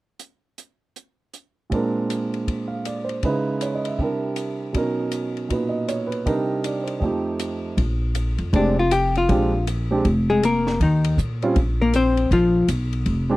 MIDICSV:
0, 0, Header, 1, 5, 480
1, 0, Start_track
1, 0, Tempo, 378549
1, 252, Time_signature, 4, 2, 24, 8
1, 16949, End_track
2, 0, Start_track
2, 0, Title_t, "Hollow-body jazz guitar"
2, 0, Program_c, 0, 26
2, 10851, Note_on_c, 0, 62, 61
2, 11135, Note_off_c, 0, 62, 0
2, 11150, Note_on_c, 0, 65, 71
2, 11308, Note_on_c, 0, 67, 74
2, 11312, Note_off_c, 0, 65, 0
2, 11603, Note_off_c, 0, 67, 0
2, 11636, Note_on_c, 0, 65, 72
2, 12233, Note_off_c, 0, 65, 0
2, 13058, Note_on_c, 0, 68, 82
2, 13065, Note_on_c, 0, 56, 59
2, 13223, Note_off_c, 0, 68, 0
2, 13227, Note_off_c, 0, 56, 0
2, 13247, Note_on_c, 0, 58, 60
2, 13253, Note_on_c, 0, 70, 64
2, 13682, Note_off_c, 0, 58, 0
2, 13683, Note_off_c, 0, 70, 0
2, 13727, Note_on_c, 0, 63, 47
2, 13733, Note_on_c, 0, 51, 36
2, 14161, Note_off_c, 0, 63, 0
2, 14164, Note_off_c, 0, 51, 0
2, 14982, Note_on_c, 0, 70, 71
2, 14989, Note_on_c, 0, 58, 62
2, 15143, Note_off_c, 0, 70, 0
2, 15147, Note_off_c, 0, 58, 0
2, 15160, Note_on_c, 0, 60, 59
2, 15164, Note_on_c, 0, 72, 72
2, 15595, Note_off_c, 0, 72, 0
2, 15597, Note_off_c, 0, 60, 0
2, 15634, Note_on_c, 0, 65, 73
2, 15642, Note_on_c, 0, 53, 52
2, 16072, Note_off_c, 0, 65, 0
2, 16076, Note_off_c, 0, 53, 0
2, 16949, End_track
3, 0, Start_track
3, 0, Title_t, "Grand piano"
3, 0, Program_c, 1, 0
3, 2152, Note_on_c, 1, 46, 47
3, 2168, Note_on_c, 1, 56, 44
3, 2186, Note_on_c, 1, 60, 43
3, 2207, Note_on_c, 1, 62, 47
3, 2219, Note_on_c, 1, 70, 52
3, 3395, Note_on_c, 1, 77, 39
3, 3627, Note_on_c, 1, 74, 42
3, 3724, Note_off_c, 1, 77, 0
3, 3862, Note_on_c, 1, 72, 42
3, 3990, Note_off_c, 1, 74, 0
3, 4087, Note_off_c, 1, 56, 0
3, 4089, Note_off_c, 1, 46, 0
3, 4103, Note_on_c, 1, 49, 52
3, 4106, Note_off_c, 1, 60, 0
3, 4106, Note_on_c, 1, 56, 46
3, 4116, Note_off_c, 1, 62, 0
3, 4117, Note_on_c, 1, 63, 48
3, 4118, Note_on_c, 1, 64, 48
3, 4123, Note_off_c, 1, 70, 0
3, 4123, Note_on_c, 1, 71, 59
3, 4197, Note_off_c, 1, 72, 0
3, 4595, Note_on_c, 1, 73, 38
3, 4753, Note_on_c, 1, 75, 41
3, 4873, Note_off_c, 1, 73, 0
3, 4919, Note_on_c, 1, 76, 39
3, 4992, Note_off_c, 1, 75, 0
3, 5053, Note_on_c, 1, 48, 42
3, 5064, Note_off_c, 1, 49, 0
3, 5066, Note_off_c, 1, 56, 0
3, 5068, Note_on_c, 1, 55, 35
3, 5071, Note_off_c, 1, 63, 0
3, 5072, Note_off_c, 1, 64, 0
3, 5074, Note_off_c, 1, 71, 0
3, 5085, Note_on_c, 1, 62, 37
3, 5099, Note_on_c, 1, 64, 40
3, 5115, Note_on_c, 1, 70, 44
3, 5155, Note_off_c, 1, 76, 0
3, 5994, Note_on_c, 1, 47, 45
3, 6013, Note_on_c, 1, 54, 43
3, 6020, Note_off_c, 1, 48, 0
3, 6028, Note_off_c, 1, 55, 0
3, 6029, Note_on_c, 1, 61, 40
3, 6037, Note_off_c, 1, 62, 0
3, 6040, Note_off_c, 1, 70, 0
3, 6043, Note_off_c, 1, 64, 0
3, 6043, Note_on_c, 1, 63, 42
3, 6059, Note_on_c, 1, 70, 53
3, 6950, Note_off_c, 1, 63, 0
3, 6956, Note_on_c, 1, 46, 37
3, 6969, Note_on_c, 1, 63, 33
3, 6982, Note_on_c, 1, 66, 31
3, 7000, Note_on_c, 1, 71, 43
3, 7215, Note_on_c, 1, 75, 44
3, 7463, Note_on_c, 1, 73, 43
3, 7557, Note_off_c, 1, 75, 0
3, 7678, Note_off_c, 1, 71, 0
3, 7697, Note_on_c, 1, 71, 45
3, 7830, Note_off_c, 1, 73, 0
3, 7929, Note_off_c, 1, 63, 0
3, 7929, Note_off_c, 1, 70, 0
3, 7933, Note_off_c, 1, 46, 0
3, 7933, Note_off_c, 1, 47, 0
3, 7935, Note_on_c, 1, 48, 51
3, 7941, Note_on_c, 1, 55, 46
3, 7941, Note_on_c, 1, 62, 45
3, 7943, Note_off_c, 1, 54, 0
3, 7946, Note_off_c, 1, 66, 0
3, 7948, Note_on_c, 1, 63, 50
3, 7948, Note_on_c, 1, 70, 57
3, 7951, Note_off_c, 1, 61, 0
3, 8037, Note_off_c, 1, 71, 0
3, 8434, Note_on_c, 1, 74, 37
3, 8668, Note_on_c, 1, 72, 38
3, 8797, Note_off_c, 1, 74, 0
3, 8874, Note_on_c, 1, 41, 42
3, 8896, Note_on_c, 1, 53, 40
3, 8902, Note_off_c, 1, 48, 0
3, 8905, Note_off_c, 1, 63, 0
3, 8906, Note_off_c, 1, 55, 0
3, 8906, Note_off_c, 1, 62, 0
3, 8906, Note_on_c, 1, 57, 42
3, 8909, Note_off_c, 1, 70, 0
3, 8924, Note_on_c, 1, 63, 39
3, 8941, Note_on_c, 1, 67, 49
3, 9004, Note_off_c, 1, 72, 0
3, 9852, Note_off_c, 1, 41, 0
3, 9863, Note_off_c, 1, 53, 0
3, 9868, Note_off_c, 1, 57, 0
3, 9877, Note_off_c, 1, 63, 0
3, 9885, Note_off_c, 1, 67, 0
3, 10817, Note_on_c, 1, 56, 55
3, 10825, Note_on_c, 1, 60, 48
3, 10827, Note_on_c, 1, 62, 48
3, 10836, Note_on_c, 1, 67, 59
3, 11096, Note_off_c, 1, 56, 0
3, 11100, Note_off_c, 1, 60, 0
3, 11102, Note_off_c, 1, 62, 0
3, 11106, Note_off_c, 1, 67, 0
3, 11775, Note_on_c, 1, 56, 57
3, 11782, Note_on_c, 1, 60, 50
3, 11791, Note_on_c, 1, 67, 64
3, 11792, Note_on_c, 1, 62, 53
3, 12055, Note_off_c, 1, 56, 0
3, 12058, Note_off_c, 1, 60, 0
3, 12062, Note_off_c, 1, 67, 0
3, 12063, Note_off_c, 1, 62, 0
3, 12562, Note_on_c, 1, 56, 57
3, 12569, Note_on_c, 1, 60, 51
3, 12577, Note_on_c, 1, 67, 64
3, 12579, Note_on_c, 1, 62, 54
3, 12724, Note_off_c, 1, 56, 0
3, 12727, Note_off_c, 1, 60, 0
3, 12731, Note_off_c, 1, 67, 0
3, 12732, Note_off_c, 1, 62, 0
3, 14488, Note_on_c, 1, 55, 61
3, 14490, Note_on_c, 1, 60, 55
3, 14500, Note_on_c, 1, 65, 69
3, 14501, Note_on_c, 1, 61, 53
3, 14644, Note_off_c, 1, 55, 0
3, 14645, Note_off_c, 1, 60, 0
3, 14650, Note_off_c, 1, 65, 0
3, 14651, Note_off_c, 1, 61, 0
3, 16858, Note_on_c, 1, 56, 62
3, 16869, Note_on_c, 1, 60, 53
3, 16874, Note_on_c, 1, 62, 58
3, 16881, Note_on_c, 1, 67, 66
3, 16949, Note_off_c, 1, 56, 0
3, 16949, Note_off_c, 1, 60, 0
3, 16949, Note_off_c, 1, 62, 0
3, 16949, Note_off_c, 1, 67, 0
3, 16949, End_track
4, 0, Start_track
4, 0, Title_t, "Upright bass"
4, 0, Program_c, 2, 32
4, 9857, Note_on_c, 2, 34, 76
4, 10596, Note_off_c, 2, 34, 0
4, 10634, Note_on_c, 2, 41, 59
4, 10806, Note_off_c, 2, 41, 0
4, 10813, Note_on_c, 2, 29, 76
4, 11731, Note_off_c, 2, 29, 0
4, 11778, Note_on_c, 2, 34, 83
4, 12692, Note_off_c, 2, 34, 0
4, 12741, Note_on_c, 2, 29, 76
4, 13653, Note_off_c, 2, 29, 0
4, 13699, Note_on_c, 2, 39, 79
4, 14146, Note_off_c, 2, 39, 0
4, 14172, Note_on_c, 2, 46, 69
4, 14622, Note_off_c, 2, 46, 0
4, 14657, Note_on_c, 2, 34, 77
4, 15568, Note_off_c, 2, 34, 0
4, 15607, Note_on_c, 2, 34, 79
4, 16057, Note_off_c, 2, 34, 0
4, 16081, Note_on_c, 2, 35, 65
4, 16533, Note_off_c, 2, 35, 0
4, 16559, Note_on_c, 2, 29, 68
4, 16949, Note_off_c, 2, 29, 0
4, 16949, End_track
5, 0, Start_track
5, 0, Title_t, "Drums"
5, 247, Note_on_c, 9, 42, 47
5, 374, Note_off_c, 9, 42, 0
5, 736, Note_on_c, 9, 42, 44
5, 862, Note_off_c, 9, 42, 0
5, 1218, Note_on_c, 9, 42, 43
5, 1345, Note_off_c, 9, 42, 0
5, 1693, Note_on_c, 9, 42, 44
5, 1820, Note_off_c, 9, 42, 0
5, 2179, Note_on_c, 9, 36, 26
5, 2179, Note_on_c, 9, 51, 40
5, 2305, Note_off_c, 9, 36, 0
5, 2305, Note_off_c, 9, 51, 0
5, 2662, Note_on_c, 9, 44, 46
5, 2662, Note_on_c, 9, 51, 48
5, 2789, Note_off_c, 9, 44, 0
5, 2789, Note_off_c, 9, 51, 0
5, 2963, Note_on_c, 9, 51, 28
5, 3090, Note_off_c, 9, 51, 0
5, 3141, Note_on_c, 9, 36, 27
5, 3144, Note_on_c, 9, 51, 45
5, 3268, Note_off_c, 9, 36, 0
5, 3271, Note_off_c, 9, 51, 0
5, 3617, Note_on_c, 9, 44, 48
5, 3617, Note_on_c, 9, 51, 49
5, 3744, Note_off_c, 9, 44, 0
5, 3744, Note_off_c, 9, 51, 0
5, 3919, Note_on_c, 9, 51, 35
5, 4046, Note_off_c, 9, 51, 0
5, 4092, Note_on_c, 9, 51, 41
5, 4098, Note_on_c, 9, 36, 30
5, 4219, Note_off_c, 9, 51, 0
5, 4224, Note_off_c, 9, 36, 0
5, 4576, Note_on_c, 9, 44, 49
5, 4576, Note_on_c, 9, 51, 52
5, 4702, Note_off_c, 9, 44, 0
5, 4702, Note_off_c, 9, 51, 0
5, 4881, Note_on_c, 9, 51, 43
5, 5008, Note_off_c, 9, 51, 0
5, 5057, Note_on_c, 9, 36, 26
5, 5184, Note_off_c, 9, 36, 0
5, 5528, Note_on_c, 9, 44, 43
5, 5528, Note_on_c, 9, 51, 47
5, 5655, Note_off_c, 9, 44, 0
5, 5655, Note_off_c, 9, 51, 0
5, 6016, Note_on_c, 9, 51, 47
5, 6019, Note_on_c, 9, 36, 29
5, 6142, Note_off_c, 9, 51, 0
5, 6145, Note_off_c, 9, 36, 0
5, 6486, Note_on_c, 9, 44, 52
5, 6486, Note_on_c, 9, 51, 49
5, 6612, Note_off_c, 9, 44, 0
5, 6612, Note_off_c, 9, 51, 0
5, 6805, Note_on_c, 9, 51, 29
5, 6932, Note_off_c, 9, 51, 0
5, 6978, Note_on_c, 9, 51, 45
5, 6981, Note_on_c, 9, 36, 25
5, 7105, Note_off_c, 9, 51, 0
5, 7108, Note_off_c, 9, 36, 0
5, 7461, Note_on_c, 9, 44, 50
5, 7461, Note_on_c, 9, 51, 45
5, 7588, Note_off_c, 9, 44, 0
5, 7588, Note_off_c, 9, 51, 0
5, 7760, Note_on_c, 9, 51, 34
5, 7887, Note_off_c, 9, 51, 0
5, 7942, Note_on_c, 9, 36, 29
5, 7945, Note_on_c, 9, 51, 46
5, 8069, Note_off_c, 9, 36, 0
5, 8072, Note_off_c, 9, 51, 0
5, 8421, Note_on_c, 9, 44, 52
5, 8421, Note_on_c, 9, 51, 54
5, 8547, Note_off_c, 9, 44, 0
5, 8547, Note_off_c, 9, 51, 0
5, 8716, Note_on_c, 9, 51, 42
5, 8843, Note_off_c, 9, 51, 0
5, 8898, Note_on_c, 9, 36, 27
5, 9025, Note_off_c, 9, 36, 0
5, 9376, Note_on_c, 9, 44, 55
5, 9376, Note_on_c, 9, 51, 54
5, 9503, Note_off_c, 9, 44, 0
5, 9503, Note_off_c, 9, 51, 0
5, 9861, Note_on_c, 9, 36, 31
5, 9862, Note_on_c, 9, 51, 52
5, 9988, Note_off_c, 9, 36, 0
5, 9989, Note_off_c, 9, 51, 0
5, 10331, Note_on_c, 9, 44, 52
5, 10331, Note_on_c, 9, 51, 58
5, 10458, Note_off_c, 9, 44, 0
5, 10458, Note_off_c, 9, 51, 0
5, 10630, Note_on_c, 9, 51, 35
5, 10757, Note_off_c, 9, 51, 0
5, 10820, Note_on_c, 9, 36, 29
5, 10822, Note_on_c, 9, 51, 47
5, 10947, Note_off_c, 9, 36, 0
5, 10949, Note_off_c, 9, 51, 0
5, 11301, Note_on_c, 9, 44, 56
5, 11301, Note_on_c, 9, 51, 67
5, 11427, Note_off_c, 9, 44, 0
5, 11427, Note_off_c, 9, 51, 0
5, 11607, Note_on_c, 9, 51, 40
5, 11734, Note_off_c, 9, 51, 0
5, 11780, Note_on_c, 9, 51, 50
5, 11784, Note_on_c, 9, 36, 28
5, 11907, Note_off_c, 9, 51, 0
5, 11910, Note_off_c, 9, 36, 0
5, 12264, Note_on_c, 9, 44, 59
5, 12264, Note_on_c, 9, 51, 60
5, 12391, Note_off_c, 9, 44, 0
5, 12391, Note_off_c, 9, 51, 0
5, 12741, Note_on_c, 9, 51, 46
5, 12742, Note_on_c, 9, 36, 27
5, 12868, Note_off_c, 9, 51, 0
5, 12869, Note_off_c, 9, 36, 0
5, 13229, Note_on_c, 9, 44, 53
5, 13229, Note_on_c, 9, 51, 62
5, 13356, Note_off_c, 9, 44, 0
5, 13356, Note_off_c, 9, 51, 0
5, 13528, Note_on_c, 9, 38, 48
5, 13655, Note_off_c, 9, 38, 0
5, 13702, Note_on_c, 9, 36, 29
5, 13703, Note_on_c, 9, 51, 50
5, 13828, Note_off_c, 9, 36, 0
5, 13830, Note_off_c, 9, 51, 0
5, 14004, Note_on_c, 9, 51, 58
5, 14131, Note_off_c, 9, 51, 0
5, 14177, Note_on_c, 9, 44, 65
5, 14303, Note_off_c, 9, 44, 0
5, 14484, Note_on_c, 9, 51, 31
5, 14611, Note_off_c, 9, 51, 0
5, 14655, Note_on_c, 9, 51, 47
5, 14659, Note_on_c, 9, 36, 30
5, 14782, Note_off_c, 9, 51, 0
5, 14786, Note_off_c, 9, 36, 0
5, 15133, Note_on_c, 9, 44, 55
5, 15133, Note_on_c, 9, 51, 63
5, 15260, Note_off_c, 9, 44, 0
5, 15260, Note_off_c, 9, 51, 0
5, 15434, Note_on_c, 9, 51, 37
5, 15561, Note_off_c, 9, 51, 0
5, 15615, Note_on_c, 9, 36, 33
5, 15618, Note_on_c, 9, 51, 51
5, 15741, Note_off_c, 9, 36, 0
5, 15745, Note_off_c, 9, 51, 0
5, 16084, Note_on_c, 9, 44, 59
5, 16084, Note_on_c, 9, 51, 67
5, 16210, Note_off_c, 9, 44, 0
5, 16210, Note_off_c, 9, 51, 0
5, 16391, Note_on_c, 9, 51, 34
5, 16518, Note_off_c, 9, 51, 0
5, 16557, Note_on_c, 9, 51, 49
5, 16566, Note_on_c, 9, 36, 28
5, 16684, Note_off_c, 9, 51, 0
5, 16693, Note_off_c, 9, 36, 0
5, 16949, End_track
0, 0, End_of_file